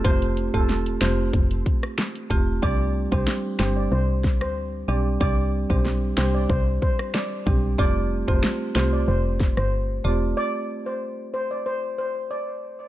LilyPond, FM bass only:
\new Staff \with { instrumentName = "FM bass" } { \clef bass \time 4/4 \key c \major \tempo 4 = 93 f,,8. e,,8. f,,8 f,,8 r4 e,,8 | c,8. c,16 r8 g,,8 c,8. d,8. b,,8 | c,8. b,,8. c,8 c,8 r4 b,,8 | f,,8. f,,16 r8 c,8 f,,8. g,,8. e,,8 |
r1 | }